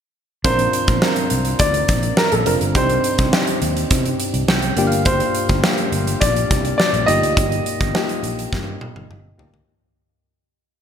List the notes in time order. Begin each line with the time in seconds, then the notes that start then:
0.44 A#1 C4 D4 F4 A#4 C5, kick, closed hi-hat
0.59 closed hi-hat
0.73 closed hi-hat
0.88 A#1, kick, closed hi-hat
1.02 C4 D4 F4 A#4, snare
1.16 closed hi-hat
1.30 C2, closed hi-hat
1.45 closed hi-hat
1.59 D2 D5, kick, closed hi-hat
1.74 closed hi-hat
1.88 A#1, kick, closed hi-hat
2.03 closed hi-hat
2.17 A#4, snare
2.32 A#1 A4, closed hi-hat
2.46 F1 C4 D4 F4 A#4, closed hi-hat
2.61 G1, closed hi-hat
2.75 C2 C4 D4 D#4 G4 C5, kick, closed hi-hat
2.89 closed hi-hat
3.04 closed hi-hat
3.18 C2, kick, closed hi-hat
3.32 C4 D4 D#4 G4, snare
3.47 closed hi-hat
3.61 D#2, closed hi-hat
3.77 closed hi-hat
3.91 C3, kick, closed hi-hat
4.06 closed hi-hat
4.20 closed hi-hat
4.34 C2, closed hi-hat
4.48 C2 G5, snare
4.62 closed hi-hat
4.76 G1 A#3 D4 F4 G4, closed hi-hat
4.87 F5
4.92 closed hi-hat
5.05 C5, kick, closed hi-hat
5.20 closed hi-hat
5.35 closed hi-hat
5.49 G1, kick, closed hi-hat
5.63 A#3 D4 F4 G4, snare
5.78 closed hi-hat
5.92 G1, closed hi-hat
6.07 closed hi-hat
6.21 A#1 D5, kick, closed hi-hat
6.36 closed hi-hat
6.51 C2, kick, closed hi-hat
6.65 closed hi-hat
6.78 D5, snare
6.93 A#1, closed hi-hat
7.06 G1 A#3 D#4 F4 G4 D#5, closed hi-hat
7.22 D2, closed hi-hat
7.37 G1, kick, closed hi-hat
7.52 closed hi-hat
7.66 closed hi-hat
7.81 G1, kick, closed hi-hat
7.94 A#3 D#4 F4 G4, snare
8.09 closed hi-hat
8.23 A#1, closed hi-hat
8.39 closed hi-hat
8.53 G2, kick, snare
8.81 high tom
8.95 G1, high tom
9.09 G1, mid tom
9.38 D2 A#3 D#4 F4 G4, floor tom
9.54 floor tom